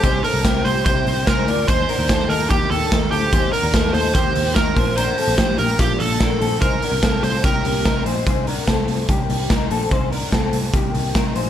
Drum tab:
RD |x-x-x-x-|x-x-x-x-|x-x-x-x-|x-x-x-x-|
HH |popopopo|popo-opo|popopopo|popopopo|
SD |--o---o-|--o---o-|--o---o-|--o---o-|
BD |o-o-o-o-|o-o-o-o-|o-o-o-oo|--o-o-o-|

RD |x-x-x-x-|--------|--------|
HH |popopopo|xoxoxoxo|xoxoxoxo|
SD |--o---o-|--o---o-|--o---o-|
BD |o-o-o-o-|o-o-o-o-|o-o-o-o-|